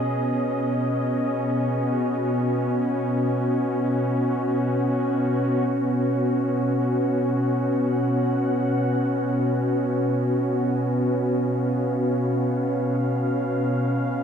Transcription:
Already playing: B2 B3 C#4 G#4 D#5
1.70 F#4
6.60 F#5
11.33 F5

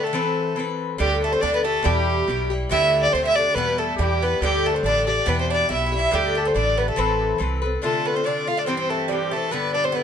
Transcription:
Already playing: D3 A3 G4
0.02 A4
0.07 A3
0.13 E3 C4 A4 B4
0.56 E3 C4 A4 B4
0.98 D2 G2 D3 G3 A3 G4
1.23 A3 A4
1.32 C4 C5
1.41 D2 G2 D3 A3 D4 G4 D5
1.54 B3 B4
1.64 D3 A3 G4 A4
1.80 B2 G3 A4
1.85 E2 E4 G4
2.28 B1 B2 G3 E4 G4
2.50 G3 E4 G4
2.69 D2 G2 D3 A3 E4 G4 E5
3.03 D4 D5
3.12 D2 G2 D3 A3 C4 G4 C5
3.23 E4 E5
3.34 A3 D4 G4 D5
3.39 D3
3.54 E2 B2 G3 B3 E4 G4 B4
3.78 A3 A4
3.96 E2 B2 G3 G4
4.01 E4 G4
4.20 B3 G4 B4
4.24 G3 E4
4.41 D2 G2 D3 G3 A3 G4
4.66 A3 A4
4.73 C4 C5
4.83 A1 G2 D3 A3 D4 D5
4.88 G4
5.06 D3 A3 D4 G4 D5
5.26 E2 B2 G3 B3 E4 G4 B4
5.39 C4 C5
5.50 D4 D5
5.69 B1 B2 G3 E4 G4 E5
5.86 E4
5.92 G3 E4 G4 E5
5.99 E4
6.11 D2 G2 D3 G3 A3 G4
6.35 A3 A4
6.45 C4 C5
6.54 A1 G2 D3 A3 D4 G4 D5
6.77 B3 A4 B4
6.88 A3 A4
6.96 A1 E3 C4 A4 B4
7.01 B4
7.07 A4
7.21 G4
7.25 A4
7.38 C2 E3 C4 A4 B4
7.62 C4 A4 B4
7.82 C3 D3 A3 F4 A4
8.05 B3 B4
8.14 C4 C5
8.24 C3 D3 A3 D4 F4 D5
8.47 D3 A3 F4 F5
8.57 D4 D5
8.66 G2 E3 C4 G4 C5
8.77 C4 C5
8.90 A3 A4
9.08 G2 E3 G3 C4 G4
9.13 G4
9.31 A3 C4 G4 A4
9.36 E3
9.51 G2 D3 B3 G4 B4
9.74 D4 D5
9.84 C4 C5
9.92 G2 D3 B3 B4
9.97 B3 G4

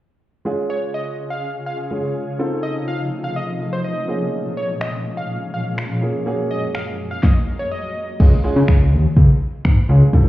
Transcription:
0.45 C#3 G#3 C#4 F4 G#4
0.70 C#5
0.94 D#5
1.30 F5
1.66 F5
1.91 G#3 C#4 F4 G#4
2.39 C3 F3 A3 C4 D#4 F4 A4
2.63 D#5
2.88 F5
3.24 F5
3.36 D#5
3.73 C5
3.84 D#5
4.08 A#2 G#3 A#3 C#4 F4 G#4
4.57 C#5
4.81 D#5, finger snap
5.17 F5
5.54 F5
5.78 finger snap
6.02 A#3 C#4 F4 G#4
6.26 A#3 C#4 F#4 G#4
6.51 D#5
6.75 F5, finger snap
7.11 F5
7.23 D#5, kick, snare
7.59 C#5
7.72 D#5
8.20 C#2 G#3 C#4 F4 G#4, kick, crash
8.44 G#3 C#4 F4 G#4
8.56 C#3
8.68 C#2, finger snap, kick
8.92 D#2
9.17 C#2, kick
9.65 G#1, finger snap, kick
9.89 C#2 G#3 C#4 F4 G#4
10.13 C2 C4 D#4 F4 A4, kick

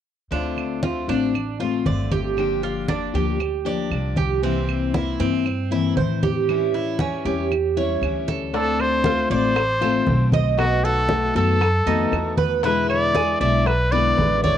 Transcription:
0.31 D2 D3 A3 C4 D4 F4, high conga
0.57 high conga, claves
0.83 D3 A3 C4 F4, high conga
1.08 A1 A3 C4 D4 F4, high conga
1.34 muted steel-string acoustic guitar stroke, high conga, claves
1.60 A3 C4 F4, high conga
1.86 G1 D3 A3 C4 F4 D5, high conga
2.11 G4, high conga
2.37 D3 F3 A#3 D4 G4, high conga, claves
2.63 F4, high conga
2.88 F3 A#3 D4 G4, high conga
3.14 D2 F3 A#3 D4 G4, high conga
3.40 muted steel-string acoustic guitar stroke, high conga, claves
3.65 F3 A#3 D4 G4 D5, high conga
3.91 C2 F3 A#3 D4 G4, high conga, claves
4.17 G4, high conga
4.42 C3 E3 A#3 C4 E4, high conga
4.68 high conga, claves
4.94 E3 A#3 C4 E4, high conga
5.20 G2 E3 A#3 C4 E4, high conga
5.46 muted steel-string acoustic guitar stroke, high conga, claves
5.71 E3 A#3 C4 E4, high conga
5.97 A2 E3 C4 E4 C5, high conga
6.23 G4, high conga
6.48 E3 G3 C#4 E4, high conga, claves
6.73 E4, high conga
6.99 E3 G3 C#4 E4, high conga
7.25 E2 G3 C#4 E4 G4, high conga
7.51 muted steel-string acoustic guitar stroke, high conga, claves
7.77 G3 C#4 E4 C#5, high conga
8.01 D2 E3 G3 C#4 E4, high conga, claves
8.28 A4, high conga
8.53 D3 A3 C4 D4 F4 A4, high bongo, high conga
8.79 C5, high bongo, high conga, claves
9.04 D3 A3 C4 F4, high bongo, high conga
9.30 A1 A3 C4 F4 C5 D5, high conga
9.55 muted steel-string acoustic guitar stroke, high bongo, high conga, claves
9.81 A3 C4 F4 A4, high bongo, high conga
10.06 B1 D3 A3 C4 F4, high bongo, low bongo, high conga
10.32 D#5, high bongo, high conga
10.58 B2 D#3 A3 B3 F#4, high bongo, high conga, claves
10.83 F#4 A4, high bongo, high conga
11.09 D#3 A3 B3 F#4, high bongo, high conga
11.35 F#2 D#3 A3 B3 F#4 A4, high conga
11.61 muted steel-string acoustic guitar stroke, high bongo, high conga, claves
11.86 F2 D#3 A3 B3 D#4 F#4, high bongo, high conga
12.12 E2 D#3 A3 B3 F#4, high bongo, low bongo, high conga, claves
12.37 B4, high bongo, high conga
12.63 B2 D3 G#3 B3 E4 B4, high bongo, high conga
12.89 D5, high bongo, high conga, claves
13.15 D3 G#3 B3 E4 G#4, high bongo, high conga
13.41 B1 D3 G#3 B3 E4 D5 E5, high conga
13.66 B4, muted steel-string acoustic guitar stroke, high bongo, high conga, claves
13.92 D3 G#3 B3 E4 B4 D5, high bongo, high conga
14.17 A1 D3 G#3 B3 E4, high bongo, low bongo, high conga
14.43 C#5 D5, high bongo, high conga

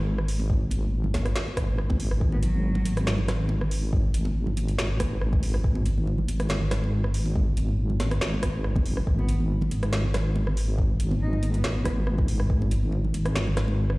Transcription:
Already playing: G#1
0.18 cross-stick
0.28 open hi-hat
0.40 muted conga
0.50 kick
0.71 G#1, closed hi-hat, muted conga
0.83 high conga
1.04 low conga
1.14 kick, snare, closed hi-hat, muted conga, high conga
1.26 cross-stick, closed hi-hat
1.36 snare
1.48 muted conga
1.57 G#1, kick, cross-stick, closed hi-hat
1.78 cross-stick
1.89 kick, muted conga, high conga
2.00 open hi-hat
2.11 cross-stick
2.21 G#1, kick
2.32 B3, muted conga
2.43 F#3, closed hi-hat
2.54 high conga
2.75 muted conga, low conga
2.85 G#1, closed hi-hat, high conga
2.97 cross-stick, closed hi-hat
3.07 snare, muted conga
3.18 low conga
3.28 cross-stick, snare, closed hi-hat, low conga
3.49 muted conga
3.61 cross-stick
3.71 open hi-hat
3.83 muted conga
3.93 kick
4.14 G#1, closed hi-hat
4.25 muted conga, high conga
4.47 low conga
4.57 closed hi-hat, muted conga, high conga
4.68 closed hi-hat
4.78 G#1, snare
5.00 kick, cross-stick, closed hi-hat, muted conga
5.21 cross-stick
5.33 kick, muted conga, high conga
5.43 G#1, open hi-hat
5.54 cross-stick
5.64 G#1, kick
5.75 muted conga
5.86 closed hi-hat
5.98 high conga
6.07 muted conga
6.18 low conga
6.28 G#1, closed hi-hat, high conga
6.40 cross-stick, closed hi-hat
6.49 snare, muted conga
6.61 low conga
6.71 cross-stick, snare, closed hi-hat, low conga
6.84 muted conga
7.04 cross-stick
7.14 open hi-hat
7.26 muted conga
7.36 kick
7.57 G#1, closed hi-hat, muted conga
7.68 high conga
7.90 low conga
8.00 snare, closed hi-hat, muted conga, high conga
8.11 cross-stick, closed hi-hat
8.21 G#1, snare
8.34 muted conga
8.43 kick, cross-stick, closed hi-hat
8.64 cross-stick
8.76 kick, muted conga, high conga
8.85 F#1, open hi-hat
8.97 cross-stick
9.07 G#1, kick
9.19 B3, muted conga
9.29 closed hi-hat
9.40 high conga
9.61 muted conga, low conga
9.71 G#1, closed hi-hat, high conga
9.83 cross-stick, closed hi-hat
9.93 snare, muted conga
10.04 low conga
10.14 cross-stick, snare, closed hi-hat, low conga
10.36 muted conga
10.47 cross-stick
10.57 open hi-hat
10.69 muted conga
10.78 kick
11.00 G#1, closed hi-hat
11.11 muted conga, high conga
11.21 D#4
11.33 low conga
11.43 closed hi-hat, muted conga, high conga
11.54 B3, closed hi-hat
11.64 G#1, snare
11.85 kick, cross-stick, closed hi-hat, muted conga
12.07 cross-stick
12.18 kick, muted conga, high conga
12.28 G#1, open hi-hat
12.40 cross-stick
12.50 G#1, kick
12.62 muted conga
12.71 closed hi-hat
12.83 high conga
12.92 muted conga
13.04 low conga
13.14 G#1, closed hi-hat, high conga
13.26 cross-stick, closed hi-hat
13.36 snare, muted conga
13.47 low conga
13.57 cross-stick, snare, closed hi-hat, low conga
13.68 muted conga
13.90 cross-stick

